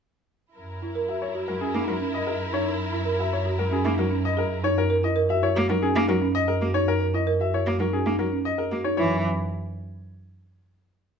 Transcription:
0.56 F#2 E4 A#4
0.82 E4
0.95 A#4
1.09 F#4 E5
1.22 C#5
1.35 F#4
1.48 F#3 A#4
1.61 C#4 G#4
1.74 A#3 D#4
1.88 F#3 A#4
2.00 C#4
2.14 D#5
2.27 G#4 A#4
2.53 D#4 C#5
2.92 E4
3.05 A#4
3.19 F#4 E5
3.33 C#5
3.45 F#4
3.59 F#3 A#4
3.71 C#4 G#4
3.84 A#3 D#4
3.98 F#3 A#4
4.11 C#4
4.25 D#5
4.37 G#4 A#4
4.64 D#4 C#5
4.78 A#4
4.90 A#4
5.03 E4 D#5
5.16 A#4
5.29 F#4 E5
5.42 E4 C#5
5.56 A#3 F#4
5.69 F#3 D#4 A#4
5.82 C#4 G#4
5.95 A#3 D#4
6.09 F#3 A#4
6.21 C#4
6.35 D#5
6.48 G#4 A#4
6.61 A#3 F#4
6.74 D#4 C#5
6.88 A#4
7.00 A#4
7.14 E4 D#5
7.27 A#4
7.40 F#4 E5
7.54 E4 C#5
7.66 A#3 F#4
7.79 F#3 D#4 A#4
7.93 C#4 G#4
8.06 A#3 D#4
8.19 F#3 A#4
8.32 C#4
8.45 D#5
8.58 G#4 A#4
8.71 A#3 F#4
8.84 D#4 C#5
8.97 F#2 E3 E4 C#5

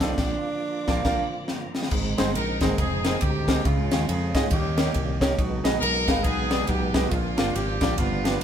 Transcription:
Already playing: D#3 A3 C4 F4 D#5 F5 A5 C6
0.00 B1 C4 D4 D#4 F4 A4, kick, snare, closed hi-hat
0.16 A#1 F3 A#3 F4 D5 A#5 D6, kick, snare, crash
0.21 D3
0.88 A#1 A#3 D4 F4 A#4, kick, snare
1.05 A#1 A#3 D4 F4 A#4, kick, snare, crash
1.47 A#5, snare
1.74 D#5, snare
1.83 snare
1.91 G#1 G#2 G#3 C4 D#4, kick, crash
2.18 G1 G#3 C4 D#4 G#4 C5, snare, ride bell
2.35 A#1 D#4 A#4, ride bell
2.61 G#1 G#3 C4 D#4 G#4 C5, kick, snare, ride bell
2.78 F1 C4 D#4 G#4, kick, ride bell
3.04 G#3 C4 D#4 G#4 A#4, snare, ride bell
3.21 D2 C4 D#4 G4, kick, ride bell
3.47 G#3 C4 D#4 G#4 A#4, kick, snare, ride bell
3.65 C#2 C#3 G#3 C#4 E4 F4, kick, ride bell
3.72 F4
3.91 D#2 G#3 C#4 F4 G#4 C#5, snare, ride bell
4.08 F2 C#4 F4 G#4, ride bell
4.34 G#2 G#3 C#4 F4 G#4 D#5, kick, snare, ride bell
4.51 D#2 D#3 G3 A#3 C#4 G4, kick, ride bell
4.77 C#4 D#4 G4 A#4 C#5, snare, ride bell
4.94 C2, kick, ride bell
5.21 C#4 D#4 G4 A#4 C#5, kick, snare, ride bell
5.38 B1 B2 G#3 B3 D4, kick, ride bell
5.44 D#4
5.64 A#1 B3 D#4 G#4 B4 D#5, snare, ride bell
5.81 B1 D#4 A#4, ride bell
6.08 G#1 B3 D#4 G#4 B4 F5, kick, snare, ride bell
6.24 B1 B3 D#4 G#4, kick, ride bell
6.50 B3 D#4 G#4 B4 D5, snare, ride bell
6.67 B1 B3 D#4 G4, kick, ride bell
6.94 B3 D#4 G#4 B4 D#5, kick, snare, ride bell
7.09 A#1 A#2 F3 A#3 D4 F4, kick, ride bell
7.37 G1 A#3 D4 F4 A#4 D5, snare, ride bell
7.55 G#1 A#3 D4 G4, ride bell
7.81 A#1 A#3 D4 F4 A#4 D5, kick, snare, ride bell
7.98 G1 G2 F3 G3 B3 D4 F4 F#4, kick, ride bell
8.04 G4
8.24 B3 D4 F4 G4 B4, snare, ride bell

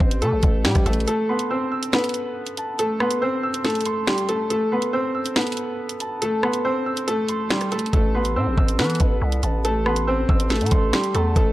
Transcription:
Already playing: C4 C5
0.00 A1, kick
0.11 closed hi-hat
0.22 C3 A3 A4, closed hi-hat
0.33 A1
0.43 A1, kick, closed hi-hat
0.65 A2 G3 G4, finger snap, snare
0.75 A1, kick, cross-stick, closed hi-hat
0.86 A1 A3 A4, closed hi-hat
0.93 closed hi-hat
1.00 closed hi-hat
1.07 A3 A4, closed hi-hat
1.29 B3 B4 C6
1.39 closed hi-hat
1.50 C4 C5 E6
1.72 E6
1.83 closed hi-hat
1.93 B3 A4 B4, finger snap, snare, closed hi-hat
1.99 closed hi-hat
2.04 closed hi-hat
2.09 closed hi-hat
2.14 closed hi-hat
2.46 closed hi-hat
2.57 A5, closed hi-hat
2.79 A3 A4, closed hi-hat
3.00 B3 B4 C6, cross-stick
3.11 closed hi-hat
3.22 C4 C5 E6
3.43 E6
3.54 closed hi-hat
3.65 A3 A4, snare, closed hi-hat
3.70 closed hi-hat
3.75 closed hi-hat
3.81 closed hi-hat
3.85 C6, closed hi-hat
4.07 G3 G4 C6, finger snap, snare
4.18 closed hi-hat
4.29 A3 A4 A5, closed hi-hat
4.50 A3 A4, closed hi-hat
4.72 B3 B4 C6
4.82 closed hi-hat
4.93 C4 C5 E6
5.15 E6
5.26 closed hi-hat
5.36 B3 A4 B4, finger snap, snare, closed hi-hat
5.41 closed hi-hat
5.47 closed hi-hat
5.52 closed hi-hat
5.57 closed hi-hat
5.89 closed hi-hat
6.00 A5, closed hi-hat
6.22 A3 A4, closed hi-hat
6.43 B3 B4 C6, cross-stick
6.53 closed hi-hat
6.65 C4 C5 E6
6.86 E6
6.97 closed hi-hat
7.08 A3 A4, closed hi-hat
7.28 C6, closed hi-hat
7.50 G3 G4 C6, finger snap, snare
7.61 cross-stick, closed hi-hat
7.72 A3 A4 A5, closed hi-hat
7.79 closed hi-hat
7.86 closed hi-hat
7.93 A1 A3 A4, kick, closed hi-hat
8.14 B3 B4 C6
8.25 closed hi-hat
8.36 A2 C4 C5 E6
8.47 A1
8.58 A1 E6, kick
8.68 closed hi-hat
8.79 E3 B3 A4 B4, finger snap, snare, closed hi-hat
8.84 closed hi-hat
8.90 closed hi-hat
8.95 closed hi-hat
9.00 A1, kick, closed hi-hat
9.22 C2
9.32 closed hi-hat
9.43 A1 A5, closed hi-hat
9.65 A3 A4, closed hi-hat
9.86 B3 B4 C6, cross-stick
9.96 closed hi-hat
10.07 C4 C5 E6
10.29 A1 E6, kick
10.40 closed hi-hat
10.50 A3 A4, snare, closed hi-hat
10.56 closed hi-hat
10.61 A2, closed hi-hat
10.66 closed hi-hat
10.71 A1 C6, kick, closed hi-hat
10.93 G3 G4 C6, finger snap, snare
11.04 closed hi-hat
11.15 E2 A3 A4 A5, closed hi-hat
11.36 A1 A3 A4, kick, closed hi-hat

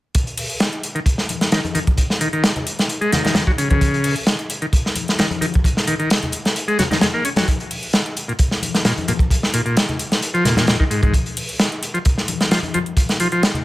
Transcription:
0.15 kick, closed hi-hat
0.27 closed hi-hat
0.38 closed hi-hat, open hi-hat
0.50 closed hi-hat
0.60 snare, closed hi-hat
0.73 closed hi-hat
0.83 closed hi-hat
0.95 D#3, closed hi-hat
1.06 kick, closed hi-hat
1.18 snare
1.29 closed hi-hat, high conga
1.41 snare, closed hi-hat
1.52 D#3, snare, closed hi-hat
1.64 closed hi-hat, high conga
1.75 D#3, closed hi-hat, high conga
1.87 kick, closed hi-hat
1.97 kick, closed hi-hat
2.10 snare
2.21 D#3, closed hi-hat
2.33 D#3, closed hi-hat
2.44 snare, closed hi-hat
2.56 closed hi-hat, low conga
2.67 closed hi-hat
2.79 snare, closed hi-hat
2.89 closed hi-hat
3.01 G#3, closed hi-hat
3.12 D#3, snare, closed hi-hat, low conga
3.24 D#3, snare, closed hi-hat, high conga
3.35 D#3, snare, closed hi-hat, low conga
3.47 F#3, kick
3.58 C#3, closed hi-hat
3.70 C#3, kick, closed hi-hat, high conga
3.81 kick, closed hi-hat
3.94 closed hi-hat
4.04 closed hi-hat, open hi-hat
4.16 closed hi-hat
4.27 snare, closed hi-hat
4.39 closed hi-hat
4.50 closed hi-hat
4.62 D#3, closed hi-hat
4.73 kick, closed hi-hat
4.86 snare
4.96 closed hi-hat, high conga
5.08 snare, closed hi-hat
5.19 D#3, snare, closed hi-hat
5.31 closed hi-hat, high conga
5.41 D#3, closed hi-hat, high conga
5.54 kick, closed hi-hat
5.64 kick, closed hi-hat
5.77 snare
5.87 D#3, closed hi-hat
5.99 D#3, closed hi-hat
6.10 snare, closed hi-hat
6.23 closed hi-hat, low conga
6.32 closed hi-hat
6.45 snare, closed hi-hat
6.56 closed hi-hat
6.68 G#3, closed hi-hat
6.79 F#3, snare, closed hi-hat, low conga
6.91 D#3, snare, closed hi-hat, high conga
7.01 G#3, snare, closed hi-hat, low conga
7.14 A#3
7.25 C#4, closed hi-hat
7.36 F#3, snare, closed hi-hat, high conga
7.48 kick, closed hi-hat
7.60 closed hi-hat
7.71 closed hi-hat, open hi-hat
7.83 closed hi-hat
7.93 snare, closed hi-hat
8.06 closed hi-hat
8.17 closed hi-hat
8.28 A#2, closed hi-hat
8.39 kick, closed hi-hat
8.51 snare
8.62 closed hi-hat, high conga
8.74 snare, closed hi-hat
8.85 A#2, snare, closed hi-hat
8.98 closed hi-hat, high conga
9.08 A#2, closed hi-hat, high conga
9.19 kick, closed hi-hat
9.30 kick, closed hi-hat
9.43 snare
9.54 A#2, closed hi-hat
9.66 A#2, closed hi-hat
9.77 snare, closed hi-hat
9.89 closed hi-hat, low conga
9.99 closed hi-hat
10.12 snare, closed hi-hat
10.22 closed hi-hat
10.34 F3, closed hi-hat
10.45 A#2, snare, closed hi-hat, low conga
10.56 A#2, snare, closed hi-hat, high conga
10.67 A#2, snare, closed hi-hat, low conga
10.80 D#3, kick
10.90 G#2, closed hi-hat
11.02 G#2, kick, closed hi-hat, high conga
11.14 kick, closed hi-hat
11.26 closed hi-hat
11.37 closed hi-hat, open hi-hat
11.49 closed hi-hat
11.60 snare, closed hi-hat
11.72 closed hi-hat
11.83 closed hi-hat
11.94 F3, closed hi-hat
12.05 kick, closed hi-hat
12.18 snare
12.28 closed hi-hat, high conga
12.41 snare, closed hi-hat
12.51 F3, snare, closed hi-hat
12.63 closed hi-hat, high conga
12.74 F3, closed hi-hat, high conga
12.86 closed hi-hat
12.97 kick, closed hi-hat
13.09 snare, closed hi-hat
13.20 F3, closed hi-hat
13.32 F3, closed hi-hat
13.43 snare, closed hi-hat
13.54 closed hi-hat, low conga

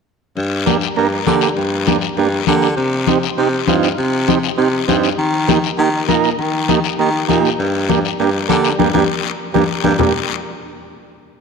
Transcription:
0.37 G2, high conga, long guiro
0.66 A#3 D4 G4, high conga, short guiro
0.81 short guiro
0.96 G2 A#3 D4 A#4, high conga, long guiro
1.27 D3 A#3 D4 G4, high conga, short guiro
1.41 short guiro
1.56 G2, high conga, long guiro
1.87 A#3 D4 G4, high conga, short guiro
2.01 short guiro
2.17 G2 A#3 D4 G4, high conga, long guiro
2.47 D3 A#3 D4 G4, high conga, short guiro
2.62 short guiro
2.76 C3, high conga, long guiro
3.07 C4 D#4 G4, high conga, short guiro
3.23 short guiro
3.37 C3 C4 D#4 G4, high conga, long guiro
3.67 G2 C4 D#4 F4, high conga, short guiro
3.83 short guiro
3.98 C3, high conga, long guiro
4.28 C4 D#4 G4, high conga, short guiro
4.43 short guiro
4.57 C3 C4 D#4 G4, high conga, long guiro
4.88 G2 C4 D#4 G4, high conga, short guiro
5.03 short guiro
5.18 D#3, high conga, long guiro
5.48 A#3 D#4 G4, high conga, short guiro
5.64 short guiro
5.78 D#3 A#3 D#4 G4, high conga, long guiro
6.08 A#2 A#3 D#4 A#4, high conga, short guiro
6.24 short guiro
6.38 D#3, high conga, long guiro
6.69 A#3 D#4 G4, high conga, short guiro
6.84 short guiro
6.99 D#3 A#3 D#4 G4, high conga, long guiro
7.28 A#2 A#3 D#4 G4, high conga, short guiro
7.45 short guiro
7.59 G2, high conga, long guiro
7.89 A#3 D4 G4, high conga, short guiro
8.05 short guiro
8.19 G2 A#3 D4 G4, high conga, long guiro
8.49 D3 A#3 D4 G4, high conga, short guiro
8.64 short guiro
8.79 G2 A#3 D4 G4, high conga, long guiro
8.94 G2 A#3 D4 G4, high conga, long guiro
9.54 G2 A#3 D4 G4, high conga, long guiro
9.84 G2 A#3 D4 G4, high conga, long guiro
9.99 G2 A#3 D4 G4, low conga, long guiro

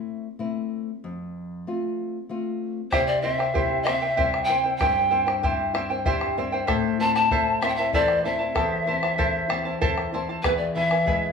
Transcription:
Already playing: A3 C4 E4
0.39 A3 C4 E4
1.04 F2
1.67 A3 C4 F4
2.29 A3 C4 F4
2.92 C3 E4 G4 C5 E5 G5, bombo rim, bombo low
3.07 D5
3.21 E4 C5 E5 G5
3.26 C4
3.38 E4 C5 G5, bombo rim
3.54 E4 G4 C5 E5 G5, bombo rim, bombo low
3.58 E4
3.83 E4 C5 E5 G5, bombo rim
3.89 C4
4.02 E4 C5 G5
4.17 G3 E4 G4 C5 E5 G5, bombo low
4.34 bombo rim
4.44 G5
4.49 C4 E4 C5 E5 G5, bombo rim
4.64 E4 C5 G5
4.76 G4 G5
4.81 G2 E4 C5 E5 G5, bombo rim, bombo low
5.10 C4 E4 C5 E5 G5
5.27 E4 C5 G5, bombo rim
5.43 E4 G4 C5 E5 G5, bombo rim, bombo low
5.74 C4 E4 C5 E5 G5, bombo rim
5.90 E4 C5 G5
6.05 G3 E4 G4 C5 E5 G5, bombo low
6.21 bombo rim
6.37 C4 E4 C5 E5 G5, bombo rim
6.52 E4 C5 G5
6.67 A2 E4 A4 C5 E5 A5, bombo rim, bombo low
7.00 C4 E4 C5 E5 A5
7.15 E4 C5 A5, bombo rim
7.31 E4 A4 C5 E5 A5, bombo rim, bombo low
7.61 C4 E4 C5 E5 A5, bombo rim
7.68 G5
7.76 C5 E5 A5
7.80 E4
7.93 E3 E4 A4 C5 D5 E5 A5, bombo low
8.08 bombo rim
8.24 C4 E4 C5 E5 A5, bombo rim
8.39 E4 C5 A5
8.55 E2 E4 A4 C5 E5 A5, bombo rim, bombo low
8.72 bombo rim
8.87 C4 E4 C5 E5 A5
9.03 E4 C5 A5, bombo rim
9.18 E4 A4 C5 E5 A5, bombo rim, bombo low
9.49 C4 E4 C5 E5 A5, bombo rim
9.65 E4 C5 A5
9.81 E3 E4 A4 C5 E5 A5, bombo rim, bombo low
9.98 bombo rim
10.13 C4 E4 C5 E5 A5
10.29 E4 C5 A5, bombo rim
10.43 E2 E4 G#4 B4 E5 G#5, bombo rim, bombo low
10.57 D5
10.74 E3 E4 B4 E5 G#5
10.91 E4 B4 G#5, bombo rim
11.06 G#3 E4 G#4 B4 E5 G#5, bombo rim, bombo low

